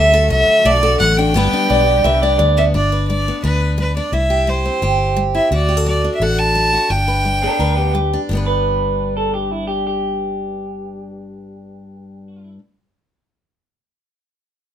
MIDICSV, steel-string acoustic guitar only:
0, 0, Header, 1, 2, 480
1, 0, Start_track
1, 0, Key_signature, 1, "major"
1, 0, Tempo, 347222
1, 1865, Time_signature, 4, 2, 24, 8
1, 20388, End_track
2, 0, Start_track
2, 0, Title_t, "Steel-string acoustic guitar"
2, 0, Program_c, 0, 25
2, 0, Note_on_c, 0, 50, 74
2, 0, Note_on_c, 0, 69, 75
2, 171, Note_off_c, 0, 69, 0
2, 188, Note_on_c, 0, 69, 78
2, 376, Note_off_c, 0, 50, 0
2, 420, Note_on_c, 0, 54, 64
2, 855, Note_off_c, 0, 54, 0
2, 890, Note_off_c, 0, 69, 0
2, 898, Note_on_c, 0, 45, 70
2, 907, Note_on_c, 0, 69, 84
2, 1128, Note_off_c, 0, 69, 0
2, 1145, Note_on_c, 0, 69, 79
2, 1333, Note_off_c, 0, 45, 0
2, 1381, Note_on_c, 0, 54, 69
2, 1639, Note_on_c, 0, 62, 67
2, 1814, Note_off_c, 0, 54, 0
2, 1835, Note_off_c, 0, 69, 0
2, 1854, Note_on_c, 0, 43, 80
2, 1870, Note_on_c, 0, 55, 66
2, 1871, Note_off_c, 0, 62, 0
2, 1877, Note_on_c, 0, 59, 72
2, 1887, Note_on_c, 0, 62, 65
2, 1895, Note_on_c, 0, 71, 80
2, 2103, Note_off_c, 0, 62, 0
2, 2120, Note_on_c, 0, 62, 61
2, 2290, Note_off_c, 0, 43, 0
2, 2332, Note_off_c, 0, 55, 0
2, 2348, Note_on_c, 0, 55, 68
2, 2777, Note_off_c, 0, 55, 0
2, 2820, Note_off_c, 0, 71, 0
2, 2824, Note_on_c, 0, 50, 73
2, 2837, Note_on_c, 0, 71, 70
2, 3065, Note_off_c, 0, 62, 0
2, 3081, Note_on_c, 0, 62, 67
2, 3254, Note_off_c, 0, 50, 0
2, 3303, Note_on_c, 0, 55, 76
2, 3548, Note_off_c, 0, 59, 0
2, 3564, Note_on_c, 0, 59, 57
2, 3734, Note_off_c, 0, 55, 0
2, 3759, Note_off_c, 0, 71, 0
2, 3764, Note_off_c, 0, 59, 0
2, 3781, Note_off_c, 0, 62, 0
2, 3789, Note_on_c, 0, 43, 63
2, 3797, Note_on_c, 0, 62, 55
2, 4039, Note_on_c, 0, 71, 57
2, 4217, Note_off_c, 0, 43, 0
2, 4282, Note_on_c, 0, 55, 56
2, 4534, Note_on_c, 0, 59, 56
2, 4703, Note_off_c, 0, 55, 0
2, 4749, Note_off_c, 0, 62, 0
2, 4750, Note_on_c, 0, 50, 61
2, 4762, Note_on_c, 0, 62, 61
2, 5177, Note_off_c, 0, 50, 0
2, 5223, Note_on_c, 0, 55, 67
2, 5467, Note_off_c, 0, 62, 0
2, 5484, Note_on_c, 0, 62, 57
2, 5653, Note_off_c, 0, 55, 0
2, 5680, Note_off_c, 0, 71, 0
2, 5688, Note_off_c, 0, 59, 0
2, 5705, Note_on_c, 0, 48, 62
2, 5706, Note_off_c, 0, 62, 0
2, 5712, Note_on_c, 0, 64, 59
2, 5946, Note_on_c, 0, 67, 66
2, 6135, Note_off_c, 0, 48, 0
2, 6183, Note_on_c, 0, 55, 56
2, 6435, Note_on_c, 0, 60, 53
2, 6614, Note_off_c, 0, 55, 0
2, 6655, Note_off_c, 0, 67, 0
2, 6666, Note_on_c, 0, 43, 71
2, 6676, Note_on_c, 0, 67, 68
2, 7097, Note_off_c, 0, 43, 0
2, 7140, Note_on_c, 0, 55, 64
2, 7373, Note_off_c, 0, 64, 0
2, 7390, Note_on_c, 0, 64, 53
2, 7573, Note_off_c, 0, 55, 0
2, 7597, Note_off_c, 0, 64, 0
2, 7599, Note_off_c, 0, 60, 0
2, 7627, Note_off_c, 0, 67, 0
2, 7627, Note_on_c, 0, 50, 69
2, 7637, Note_on_c, 0, 66, 60
2, 7860, Note_on_c, 0, 67, 63
2, 7975, Note_off_c, 0, 67, 0
2, 7975, Note_on_c, 0, 69, 50
2, 8056, Note_off_c, 0, 50, 0
2, 8106, Note_on_c, 0, 54, 55
2, 8357, Note_on_c, 0, 62, 63
2, 8536, Note_off_c, 0, 54, 0
2, 8579, Note_off_c, 0, 69, 0
2, 8591, Note_on_c, 0, 45, 64
2, 8597, Note_on_c, 0, 69, 63
2, 9019, Note_off_c, 0, 45, 0
2, 9058, Note_on_c, 0, 54, 65
2, 9290, Note_off_c, 0, 66, 0
2, 9306, Note_on_c, 0, 66, 52
2, 9492, Note_off_c, 0, 54, 0
2, 9516, Note_off_c, 0, 66, 0
2, 9521, Note_off_c, 0, 69, 0
2, 9545, Note_on_c, 0, 43, 62
2, 9553, Note_off_c, 0, 62, 0
2, 9553, Note_on_c, 0, 62, 55
2, 9784, Note_on_c, 0, 71, 64
2, 9976, Note_off_c, 0, 43, 0
2, 10021, Note_on_c, 0, 55, 59
2, 10276, Note_on_c, 0, 59, 50
2, 10454, Note_off_c, 0, 55, 0
2, 10493, Note_off_c, 0, 71, 0
2, 10502, Note_on_c, 0, 50, 59
2, 10514, Note_on_c, 0, 71, 58
2, 10936, Note_off_c, 0, 50, 0
2, 10985, Note_on_c, 0, 55, 64
2, 11229, Note_off_c, 0, 62, 0
2, 11245, Note_on_c, 0, 62, 53
2, 11417, Note_off_c, 0, 55, 0
2, 11439, Note_off_c, 0, 71, 0
2, 11442, Note_off_c, 0, 59, 0
2, 11461, Note_on_c, 0, 43, 54
2, 11492, Note_on_c, 0, 55, 58
2, 11515, Note_on_c, 0, 59, 53
2, 11525, Note_off_c, 0, 62, 0
2, 11542, Note_on_c, 0, 62, 52
2, 11569, Note_on_c, 0, 71, 55
2, 17380, Note_off_c, 0, 43, 0
2, 17395, Note_off_c, 0, 55, 0
2, 17406, Note_off_c, 0, 59, 0
2, 17420, Note_off_c, 0, 62, 0
2, 17433, Note_off_c, 0, 71, 0
2, 20388, End_track
0, 0, End_of_file